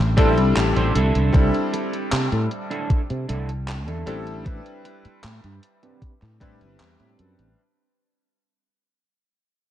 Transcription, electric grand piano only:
0.00 0.12 G3 medium
0.00 0.12 C4 medium
0.00 0.13 D4 medium
0.00 0.13 E4 medium
0.00 0.13 A4 medium
0.17 0.40 G3 medium
0.17 0.41 C4 medium
0.17 0.41 D4 medium
0.17 0.41 E4 medium
0.17 0.41 A4 loud
1.33 4.02 G3 medium
1.33 4.02 C4 medium
1.33 4.02 D4 medium
1.33 4.03 E4 medium
1.33 4.03 A4 loud
4.06 4.41 G3 medium
4.06 4.41 C4 medium
4.06 4.41 D4 medium
4.06 4.42 E4 medium
4.06 4.42 A4 loud
4.44 6.35 G3 medium
4.44 6.36 C4 medium
4.44 6.36 D4 medium
4.44 6.37 E4 medium
4.44 6.37 B4 medium
6.40 6.64 G3 medium
6.40 6.64 C4 medium
6.40 6.64 D4 medium
6.40 6.64 E4 medium
6.40 6.65 B4 loud

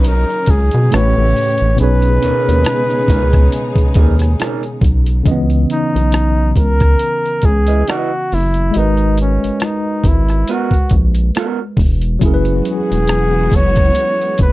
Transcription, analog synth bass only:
0.00 0.25 B1 medium
0.49 0.70 C#2 loud
0.74 0.91 B2 loud
0.94 1.14 A1 loud
1.18 1.34 A1 medium
1.61 1.78 A1 medium
1.80 2.19 B1 loud
2.24 2.33 D#2 soft
2.49 2.65 D#2 medium
3.09 3.49 C#2 loud
3.96 4.36 D#2 medium
4.82 5.22 B1 medium
5.27 5.66 C#2 loud
5.96 6.54 B1 medium
6.57 6.96 C#2 medium
7.44 7.83 C#2 medium
8.33 8.71 F#1 medium
8.76 9.39 G#1 medium
9.44 9.51 G#1 soft
10.05 10.44 G#1 medium
10.72 10.80 A#1 soft
10.92 11.31 A#1 medium
11.78 12.18 E1 loud
12.23 12.62 F#1 loud
12.92 13.50 E1 medium
13.53 13.92 F#1 medium
14.40 14.52 F#1 loud

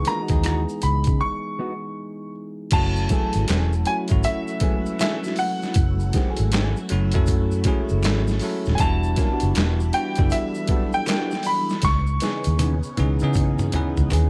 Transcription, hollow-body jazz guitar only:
0.07 0.22 D#3 medium
0.07 0.22 A#3 medium
0.07 0.22 D4 medium
0.07 0.23 F4 medium
0.22 0.42 E3 medium
0.22 0.43 B3 medium
0.22 0.43 D#4 medium
0.22 0.43 F#4 medium
0.44 0.61 E3 medium
0.44 0.62 B3 medium
0.44 0.62 D#4 medium
0.44 0.62 F#4 medium
1.59 1.72 E3 medium
1.59 1.72 B3 medium
1.59 1.73 D#4 medium
1.59 1.73 F#4 medium
3.10 3.46 E3 medium
3.10 3.46 A3 medium
3.10 3.47 C#4 medium
3.10 3.47 G#4 medium
3.48 3.72 E3 medium
3.48 3.73 A3 medium
3.48 3.73 C#4 medium
3.48 3.73 G#4 medium
4.62 4.75 E3 medium
4.62 4.76 A3 medium
4.62 4.76 C#4 medium
4.62 4.76 G#4 medium
5.00 5.17 E3 medium
5.00 5.18 A3 medium
5.00 5.18 C#4 medium
5.00 5.18 G#4 medium
6.15 6.29 D#3 medium
6.15 6.30 G#3 medium
6.15 6.30 C4 medium
6.15 6.31 G4 medium
6.29 6.50 E3 medium
6.29 6.51 A3 medium
6.29 6.51 C#4 medium
6.29 6.51 G#4 medium
6.53 6.77 E3 medium
6.53 6.77 A3 medium
6.53 6.77 C#4 medium
6.53 6.78 G#4 medium
7.66 7.80 E3 medium
7.66 7.80 A3 medium
7.66 7.80 C#4 medium
7.66 7.80 G#4 medium
8.04 8.21 E3 medium
8.04 8.21 A3 medium
8.04 8.22 C#4 medium
8.04 8.22 G#4 medium
9.17 9.32 F#3 medium
9.17 9.34 A#3 medium
9.17 9.34 C#4 medium
9.17 9.33 F4 medium
9.32 9.53 G3 medium
9.32 9.54 B3 medium
9.32 9.54 D4 medium
9.32 9.54 F#4 medium
9.55 9.80 G3 medium
9.55 9.80 B3 medium
9.55 9.81 D4 medium
9.55 9.81 F#4 medium
10.70 10.83 G3 medium
10.70 10.83 B3 medium
10.70 10.84 D4 medium
10.70 10.84 F#4 medium
11.07 11.32 G3 medium
11.07 11.32 B3 medium
11.07 11.32 D4 medium
11.07 11.32 F#4 medium
12.22 12.57 E3 medium
12.22 12.57 B3 medium
12.22 12.58 D#4 medium
12.22 12.58 G#4 loud
12.59 12.76 E3 medium
12.59 12.77 B3 medium
12.59 12.77 D#4 medium
12.59 12.77 G#4 medium
13.74 13.87 E3 medium
13.74 13.87 B3 medium
13.74 13.88 D#4 medium
13.74 13.88 G#4 medium
14.11 14.29 E3 medium
14.11 14.29 B3 medium
14.11 14.29 D#4 medium
14.11 14.30 G#4 medium

